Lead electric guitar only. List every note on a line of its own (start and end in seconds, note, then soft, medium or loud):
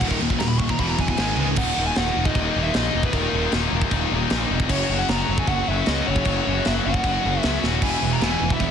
0.00 0.10 F#5 loud
0.08 0.15 A#4 loud
0.39 0.48 A#5 medium
0.48 0.58 B5 medium
0.59 0.70 C#6 loud
0.70 0.79 A#5 medium
0.80 0.89 B5 loud
0.90 0.99 A#5 medium
1.00 1.09 G#5 medium
1.10 1.46 G#5 medium
1.58 1.86 F#5 loud
1.86 1.97 G#5 medium
1.97 2.27 F#5 loud
2.26 2.63 D#5 loud
2.64 2.74 E5 loud
2.74 3.04 D#5 medium
3.04 3.14 B4 medium
3.14 3.50 A#4 medium
4.70 5.00 C#5 loud
4.99 5.09 F#5 loud
5.09 5.39 A#5 loud
5.39 5.48 G#5 loud
5.49 5.68 F#5 loud
5.68 5.87 E5 loud
5.87 6.08 D#5 loud
6.07 6.62 C#5 loud
6.66 6.71 E5 loud
6.86 7.40 F#5 loud
7.40 7.60 E5 loud
7.83 8.13 G#5 medium
8.13 8.22 A#5 medium
8.23 8.53 G#5 loud
8.53 8.71 E5 loud